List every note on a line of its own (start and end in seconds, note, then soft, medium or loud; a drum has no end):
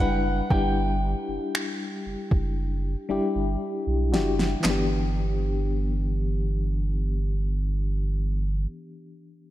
0.00 0.42 F#1 loud
0.00 0.51 G3 medium
0.00 0.52 D4 medium
0.00 0.52 E4 medium
0.00 0.52 B4 medium
0.00 0.52 F#5 medium
0.50 1.15 G1 loud
0.50 2.26 G3 medium
0.50 2.26 D4 medium
0.50 2.27 E4 medium
0.50 2.27 G4 medium
0.50 3.57 G5 medium
0.50 kick loud
1.28 1.39 F#1 soft
1.55 finger snap loud
2.06 2.16 F#1 soft
2.31 2.96 F#1 medium
2.31 kick medium
3.09 3.20 G1 soft
3.09 3.97 G3 medium
3.09 3.97 D4 medium
3.09 3.97 E4 medium
3.09 3.98 G4 medium
3.35 3.57 G1 medium
3.87 4.14 B1 medium
4.12 4.55 F#1 medium
4.12 4.57 D4 medium
4.12 4.57 E4 medium
4.12 4.56 F#4 medium
4.12 4.58 G4 medium
4.12 snare medium
4.39 snare medium
4.60 8.66 G1 medium
4.60 8.62 E3 medium
4.60 8.66 B3 medium
4.60 clap medium
4.65 8.69 D4 medium
4.65 snare medium
4.70 8.72 G4 medium